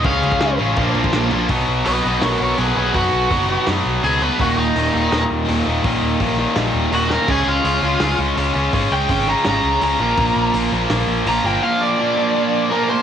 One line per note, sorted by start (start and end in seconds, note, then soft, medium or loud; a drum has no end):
0.04 0.20 C#2 loud
0.04 0.58 C#3 loud
0.04 0.58 G#3 medium
0.04 0.59 C#4 loud
0.04 0.59 F4 loud
0.04 0.58 G#4 loud
0.04 0.56 F5 loud
0.04 kick loud
0.04 crash medium
0.22 0.39 C#2 medium
0.22 0.39 C#3 medium
0.22 0.40 G#3 medium
0.22 0.41 C#4 loud
0.22 crash medium
0.32 kick medium
0.40 0.57 C#2 loud
0.40 0.57 C#3 medium
0.40 0.58 G#3 medium
0.40 0.58 C#4 loud
0.40 snare loud
0.40 crash medium
0.59 0.75 A1 loud
0.59 0.76 C#3 medium
0.59 0.77 G#3 medium
0.59 0.77 C#4 medium
0.59 0.77 F4 medium
0.59 0.76 G#4 loud
0.59 crash medium
0.76 0.93 A#1 medium
0.76 1.30 A#2 medium
0.76 1.31 F3 medium
0.76 1.31 A#3 medium
0.76 1.30 D4 medium
0.76 1.29 F4 loud
0.76 kick loud
0.76 crash medium
0.95 1.11 A#1 medium
0.95 1.12 A#2 loud
0.95 1.13 F3 loud
0.95 1.13 A#3 loud
0.95 crash medium
1.04 kick loud
1.13 1.29 A#1 medium
1.13 1.30 A#2 medium
1.13 1.31 F3 loud
1.13 1.31 A#3 loud
1.13 snare loud
1.13 crash medium
1.31 1.48 A#1 loud
1.31 1.49 A#2 medium
1.31 1.49 F3 medium
1.31 1.49 A#3 medium
1.31 1.49 D4 medium
1.31 1.48 F4 loud
1.31 crash medium
1.49 1.61 B1 medium
1.49 1.85 B2 loud
1.49 1.86 F#3 loud
1.49 1.86 B3 loud
1.49 2.75 D#4 loud
1.49 2.74 F#4 medium
1.49 kick loud
1.49 open hi-hat medium
1.69 1.80 B1 medium
1.85 1.98 B1 medium
1.85 2.03 B2 medium
1.85 2.03 F#3 medium
1.85 2.04 B3 medium
1.85 2.04 B4 medium
1.85 2.04 D#5 medium
1.85 open hi-hat medium
2.03 2.16 B1 medium
2.03 2.20 B2 medium
2.03 2.21 F#3 medium
2.03 2.22 B3 loud
2.03 2.23 B4 medium
2.03 2.24 D#5 medium
2.22 2.34 B1 medium
2.22 2.57 B2 medium
2.22 2.57 F#3 medium
2.22 2.58 B3 loud
2.22 2.41 A#4 medium
2.22 2.41 C#5 medium
2.22 snare loud
2.22 open hi-hat medium
2.41 2.52 B1 medium
2.41 2.58 A#4 medium
2.41 2.58 C#5 medium
2.57 2.70 B1 medium
2.57 2.75 B2 medium
2.57 2.75 F#3 medium
2.57 2.76 B3 medium
2.57 2.75 G#4 medium
2.57 2.76 B4 medium
2.57 open hi-hat medium
2.75 2.88 B1 medium
2.75 2.92 B2 medium
2.75 2.93 F#3 medium
2.75 2.93 B3 medium
2.75 2.95 D#4 medium
2.75 2.93 F#4 medium
2.75 2.94 G#4 medium
2.75 2.95 B4 medium
2.93 3.06 F#2 medium
2.93 3.29 B2 loud
2.93 3.29 F#3 loud
2.93 3.29 B3 loud
2.93 4.21 D#4 loud
2.93 3.65 F#4 loud
2.93 4.20 F#4 loud
2.93 kick loud
2.93 open hi-hat medium
3.13 3.25 B1 medium
3.30 3.54 F#1 medium
3.30 3.47 B2 loud
3.30 3.48 F#3 medium
3.30 3.48 B3 medium
3.30 kick medium
3.30 open hi-hat medium
3.48 3.65 B2 loud
3.48 3.66 F#3 medium
3.48 3.66 B3 loud
3.66 3.79 F#2 medium
3.66 4.02 B2 medium
3.66 4.02 F#3 loud
3.66 4.03 B3 loud
3.66 snare loud
3.66 open hi-hat medium
3.86 3.97 B1 medium
4.03 4.27 C#2 medium
4.03 4.20 B2 medium
4.03 4.21 F#3 medium
4.03 4.21 B3 loud
4.03 4.22 G#4 medium
4.03 open hi-hat medium
4.21 4.39 B2 medium
4.21 4.39 F#3 medium
4.21 4.39 B3 medium
4.21 4.41 D#4 medium
4.21 4.38 F#4 medium
4.21 4.39 B4 medium
4.39 4.51 D#1 medium
4.39 4.75 D#2 medium
4.39 4.75 A#2 medium
4.39 4.76 D#3 medium
4.39 5.66 G3 loud
4.39 5.65 A#3 loud
4.39 5.64 D#4 loud
4.39 4.58 F#4 loud
4.39 kick loud
4.39 open hi-hat medium
4.58 4.69 D#1 medium
4.58 5.28 D#4 medium
4.76 4.87 D#1 medium
4.76 4.94 D#2 medium
4.76 4.94 A#2 medium
4.76 4.95 D#3 loud
4.76 open hi-hat medium
4.94 5.06 D#1 medium
4.94 5.12 D#2 medium
4.94 5.12 A#2 medium
4.94 5.12 D#3 medium
5.12 5.24 D#1 medium
5.12 5.47 D#2 loud
5.12 5.47 A#2 medium
5.12 5.48 D#3 loud
5.12 snare loud
5.12 open hi-hat medium
5.31 5.42 D#1 medium
5.48 5.60 D#1 loud
5.48 5.65 D#2 medium
5.48 5.66 A#2 medium
5.48 5.66 D#3 medium
5.48 open hi-hat medium
5.66 5.78 D#1 medium
5.66 5.82 D#2 medium
5.66 5.83 A#2 medium
5.66 5.83 D#3 medium
5.66 5.84 G3 medium
5.66 5.83 A#3 medium
5.66 5.83 D#4 medium
5.84 5.96 A#1 medium
5.84 6.19 D#2 medium
5.84 6.20 A#2 loud
5.84 6.20 D#3 loud
5.84 7.10 G3 loud
5.84 7.09 A#3 loud
5.84 7.08 D#4 loud
5.84 kick loud
5.84 open hi-hat medium
6.03 6.14 D#1 medium
6.20 6.43 A#1 medium
6.20 6.36 D#2 medium
6.20 6.37 A#2 medium
6.20 6.37 D#3 medium
6.20 kick loud
6.20 open hi-hat medium
6.37 6.54 D#2 medium
6.37 6.55 A#2 medium
6.37 6.55 D#3 loud
6.56 6.68 A#1 medium
6.56 6.90 D#2 medium
6.56 6.91 A#2 loud
6.56 6.91 D#3 loud
6.56 snare loud
6.56 open hi-hat medium
6.75 6.86 D#1 medium
6.91 7.15 D#1 medium
6.91 7.08 D#2 medium
6.91 7.09 A#2 medium
6.91 7.09 D#3 medium
6.91 7.11 F#4 loud
6.91 open hi-hat medium
7.09 7.27 D#2 medium
7.09 7.27 A#2 medium
7.09 7.27 D#3 medium
7.09 7.28 G3 medium
7.09 7.27 A#3 medium
7.09 7.27 D#4 loud
7.09 7.29 A#4 medium
7.09 snare medium
7.28 7.40 C#2 medium
7.28 7.63 C#3 medium
7.28 7.64 G#3 loud
7.28 7.65 C#4 loud
7.28 8.54 F4 medium
7.28 7.48 G#4 loud
7.28 8.52 G#4 medium
7.28 kick loud
7.28 crash loud
7.46 7.58 C#2 medium
7.46 8.18 F4 loud
7.64 7.76 C#2 medium
7.64 7.81 C#3 loud
7.64 7.81 G#3 medium
7.64 7.82 C#4 medium
7.64 open hi-hat medium
7.82 7.94 C#2 medium
7.82 7.99 C#3 loud
7.82 8.00 G#3 medium
7.82 8.00 C#4 medium
8.00 8.12 C#2 medium
8.00 8.35 C#3 medium
8.00 8.35 G#3 medium
8.00 8.36 C#4 loud
8.00 snare loud
8.00 open hi-hat medium
8.19 8.30 C#2 medium
8.36 8.49 C#2 loud
8.36 8.53 C#3 medium
8.36 8.53 G#3 medium
8.36 8.54 C#4 loud
8.36 open hi-hat medium
8.53 8.67 C#2 loud
8.53 8.72 C#3 medium
8.53 8.72 G#3 medium
8.53 8.72 C#4 medium
8.53 8.74 F4 medium
8.53 8.71 G#4 medium
8.73 8.85 G#1 loud
8.73 9.07 C#3 loud
8.73 9.08 G#3 loud
8.73 9.09 C#4 loud
8.73 10.00 F4 loud
8.73 9.99 G#4 loud
8.73 kick loud
8.73 open hi-hat medium
8.92 9.03 C#2 medium
8.92 9.27 G5 medium
9.09 9.32 G#1 medium
9.09 9.27 C#3 medium
9.09 9.27 G#3 medium
9.09 9.27 C#4 medium
9.09 kick loud
9.09 open hi-hat medium
9.28 9.44 C#3 medium
9.28 9.44 G#3 medium
9.28 9.45 C#4 loud
9.28 9.46 A#5 medium
9.45 9.58 G#1 medium
9.45 9.80 C#3 loud
9.45 9.81 G#3 loud
9.45 9.81 C#4 loud
9.45 snare loud
9.45 open hi-hat medium
9.49 9.82 A#5 loud
9.64 9.75 C#2 medium
9.81 9.93 C#2 medium
9.81 9.98 C#3 medium
9.81 9.99 G#3 medium
9.81 9.99 C#4 loud
9.81 10.53 A#5 loud
9.81 open hi-hat medium
9.99 10.11 A#1 medium
9.99 10.17 A#2 loud
9.99 10.17 F3 loud
9.99 10.17 A#3 loud
9.99 11.25 D4 loud
9.99 11.26 F4 loud
10.17 10.29 A#1 medium
10.17 10.53 A#2 medium
10.17 10.53 F3 loud
10.17 10.54 A#3 loud
10.17 kick loud
10.17 open hi-hat medium
10.36 10.48 A#1 medium
10.54 10.65 A#1 medium
10.54 10.72 A#2 loud
10.54 10.72 F3 medium
10.54 10.73 A#3 loud
10.54 open hi-hat medium
10.72 10.84 A#1 loud
10.72 10.89 A#2 medium
10.72 10.90 F3 loud
10.72 10.90 A#3 loud
10.90 11.01 A#1 medium
10.90 11.25 A#2 loud
10.90 11.25 F3 loud
10.90 11.26 A#3 loud
10.90 snare loud
10.90 open hi-hat medium
11.08 11.19 A#1 medium
11.26 11.38 A#1 medium
11.26 11.43 A#2 medium
11.26 11.44 F3 medium
11.26 11.44 A#3 loud
11.26 11.44 D4 medium
11.26 11.45 F4 medium
11.26 11.46 A#5 loud
11.26 open hi-hat medium
11.44 11.56 G1 medium
11.44 11.61 A#2 medium
11.44 11.62 F3 medium
11.44 11.63 A#3 loud
11.44 12.70 D4 loud
11.44 12.71 F4 loud
11.44 11.63 G5 medium
11.63 11.97 A#2 loud
11.63 11.97 F3 loud
11.63 11.98 A#3 loud
11.63 11.80 F5 loud
11.81 12.86 D5 loud
11.98 12.15 A#2 medium
11.98 12.16 F3 medium
11.98 12.16 A#3 loud
12.17 12.33 A#2 medium
12.17 12.34 F3 medium
12.17 12.35 A#3 loud
12.35 12.69 A#2 medium
12.35 12.70 F3 loud
12.35 12.70 A#3 loud
12.70 12.87 A#2 medium
12.70 12.88 F3 medium
12.70 12.88 A#3 medium
12.70 12.89 D4 medium
12.70 12.89 F4 medium
12.70 12.88 A#4 medium
12.88 13.02 A#2 medium
12.88 13.02 F3 medium
12.88 13.02 A#3 loud
12.88 13.02 C5 medium